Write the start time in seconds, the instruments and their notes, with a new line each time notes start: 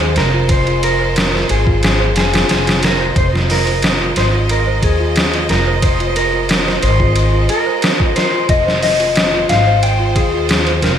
Already playing: upright bass D#2, violin section G#3 F4 C5, celesta F4, clean electric guitar G#4
0.00 celesta C5, ride
0.16 upright bass F1, clean electric guitar A#4, snare, ride
0.34 celesta F4
0.49 clean electric guitar C5, kick, ride
0.67 celesta F4, ride
0.83 clean electric guitar A#4, ride
1.00 celesta C5
1.16 snare, ride
1.34 celesta F4, snare
1.49 upright bass G#1, clean electric guitar G#4, ride
1.67 celesta F4, kick
1.83 clean electric guitar G#4, snare, ride
2.00 celesta C5
2.16 upright bass F1, clean electric guitar G#4, snare, ride
2.33 celesta F4, snare, ride
2.49 upright bass F1, snare, ride
2.67 celesta F4, snare, ride
2.83 clean electric guitar A#4, snare, ride
3.00 celesta C5
3.16 upright bass F1, violin section G#3 D#5, clean electric guitar C5, kick, ride
3.33 celesta F4, snare
3.50 clean electric guitar A#4, snare, open hi-hat
3.67 celesta C5, ride
3.82 snare, ride
4.00 celesta F4
4.16 upright bass G#1, clean electric guitar C5, snare, ride
4.33 celesta F4
4.49 clean electric guitar A#4, ride
4.67 celesta C5
4.83 upright bass D#2, clean electric guitar G#4, kick, ride
5.00 celesta F4
5.16 snare, ride
5.34 celesta F4, ride
5.49 upright bass F1, clean electric guitar A#4, snare, ride
5.67 celesta C5
5.82 clean electric guitar C5, kick, ride
6.00 celesta F4, ride
6.10 clean electric guitar C5
6.16 clean electric guitar A#4, ride
6.34 celesta F4
6.49 snare, ride
6.67 celesta C5, snare
6.82 upright bass G#1, clean electric guitar C5, ride
7.00 celesta F4, kick
7.16 ride
7.33 celesta F4
7.49 clean electric guitar A#4, ride
7.66 celesta C5
7.82 snare, ride
8.00 celesta F4, kick
8.16 clean electric guitar C5, snare, ride
8.33 celesta F4
8.49 upright bass F1, violin section F4 C5, clean electric guitar D#5, kick, ride
8.67 celesta C5, snare
8.83 clean electric guitar D#5, snare, open hi-hat
9.00 celesta F4, ride
9.16 snare, ride
9.33 celesta F4
9.49 upright bass G#1, clean electric guitar F5, snare, ride
9.67 celesta C5
9.83 clean electric guitar G5, ride
10.00 celesta F4
10.16 upright bass D#2, clean electric guitar G#4, kick, ride
10.34 celesta F4
10.49 snare, ride
10.67 celesta C5, ride
10.82 upright bass F1, clean electric guitar A#4, snare, ride